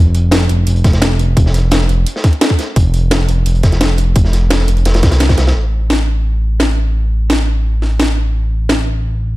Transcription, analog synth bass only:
0.00 0.48 F1 medium
0.50 0.65 F1 medium
0.67 1.35 F1 medium
1.37 1.88 F1 medium
1.89 2.05 F1 medium
2.76 3.27 F1 loud
3.28 3.44 F1 medium
3.46 4.14 F1 medium
4.16 4.67 F1 loud
4.68 4.84 F1 medium
4.85 5.04 F1 medium
5.03 5.37 C2 medium
5.38 5.54 C2 medium
5.55 9.37 A1 medium

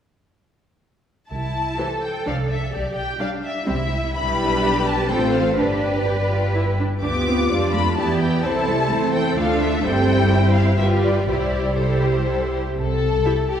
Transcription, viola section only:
1.79 1.87 E3 soft
1.79 1.87 E4 soft
2.26 2.34 F3 soft
2.26 2.34 D4 soft
3.19 3.28 G3 soft
3.19 3.27 D4 soft
3.66 3.75 G3 soft
3.66 3.74 C4 soft
4.15 5.05 G3 soft
4.15 5.05 D4 soft
5.09 5.57 A3 soft
5.09 5.56 C4 soft
5.57 6.00 D4 soft
6.05 6.13 G4 soft
6.30 6.54 F4 soft
6.54 6.62 E4 soft
6.79 6.87 D4 soft
7.03 7.47 B3 soft
7.03 7.11 D4 soft
7.27 7.35 C4 soft
7.50 7.74 G3 soft
7.50 7.97 D4 soft
7.74 7.98 A3 soft
7.97 8.45 B3 soft
7.97 8.43 E4 soft
8.44 8.68 C4 soft
8.44 8.90 E4 soft
8.67 8.91 G3 soft
8.90 9.36 A3 soft
8.90 9.38 C4 soft
9.37 9.84 A3 soft
9.37 9.85 D4 soft
9.84 10.75 G3 soft
9.84 10.75 C4 soft
10.79 11.26 G3 soft
10.79 11.28 F4 soft
11.28 11.77 G3 soft
11.28 11.76 E4 soft
11.78 12.56 G3 soft
11.78 12.56 E4 soft
13.25 13.34 E4 soft
13.25 13.33 G4 soft

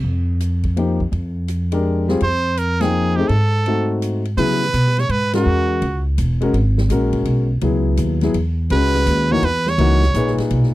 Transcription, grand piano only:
0.77 0.98 F3 medium
0.77 0.98 A#3 medium
0.77 0.98 D#4 medium
0.77 0.99 G4 medium
1.72 2.06 G#3 medium
1.72 2.06 D4 medium
1.72 2.06 G4 medium
1.72 2.07 A#4 medium
2.08 2.20 G3 medium
2.08 2.20 C4 medium
2.08 2.21 F4 medium
2.08 2.21 G#4 medium
2.80 3.14 F3 medium
2.80 3.15 A#3 medium
2.80 3.15 D#4 medium
2.80 3.15 G5 medium
3.17 3.28 A3 medium
3.17 3.29 C4 medium
3.17 3.29 D#4 medium
3.17 3.29 G#4 medium
3.67 4.21 A3 medium
3.67 4.21 C4 medium
3.67 4.21 D#4 medium
3.67 4.22 F#4 medium
4.37 4.59 F#3 medium
4.37 4.59 B3 medium
4.37 4.59 E4 medium
4.37 4.59 G#4 medium
5.33 5.79 G#3 medium
5.33 5.80 C#4 medium
5.33 5.80 F#4 medium
5.33 5.80 A#4 medium
6.41 6.52 G#3 medium
6.41 6.53 C#4 medium
6.41 6.53 F#4 medium
6.41 6.54 A#4 medium
6.90 7.45 G#3 medium
6.90 7.45 C#4 medium
6.90 7.46 F#4 medium
6.90 7.46 A#4 medium
7.62 8.17 F#3 medium
7.62 8.17 B3 medium
7.62 8.18 E4 medium
7.62 8.18 G#4 medium
8.22 8.33 F#3 medium
8.22 8.34 B3 medium
8.22 8.34 E4 medium
8.22 8.34 G#4 medium
8.71 9.26 G#3 medium
8.71 9.26 C#4 medium
8.71 9.26 F#4 medium
8.71 9.26 B4 medium
9.31 9.42 E3 medium
9.31 9.42 A#3 medium
9.31 9.42 D#4 medium
9.31 9.43 F#4 medium
9.79 10.00 E3 medium
9.79 10.00 A#3 medium
9.79 10.00 D#4 medium
9.79 10.01 F#4 medium
10.15 10.70 A#2 medium
10.15 10.70 D#4 medium
10.15 10.70 G#4 medium
10.15 10.71 B4 medium

